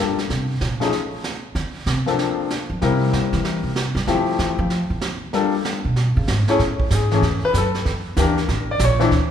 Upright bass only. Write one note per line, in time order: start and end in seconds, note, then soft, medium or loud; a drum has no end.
0.30 0.59 C3 medium
0.61 0.81 A#2 medium
1.55 1.85 D3 medium
1.86 1.99 C3 medium
2.70 2.81 F3 medium
2.82 3.11 C3 medium
3.13 3.32 D3 medium
3.33 3.62 E3 medium
3.64 3.94 C3 medium
3.95 4.07 G3 loud
4.07 4.37 D3 medium
4.39 4.58 E3 medium
4.59 4.88 F3 loud
4.90 5.20 D3 medium
5.85 6.14 B2 medium
6.17 6.28 C#3 loud
6.28 6.40 G#2 loud
6.59 6.90 A2 medium
6.91 7.21 G#2 medium
7.22 7.41 E2 medium
7.42 muted upright bass stroke soft
7.53 7.84 F#2 medium
7.85 8.16 E2 medium
8.17 8.47 D2 medium
8.48 8.79 A1 medium
8.80 9.10 A#1 loud
9.11 9.31 D2 medium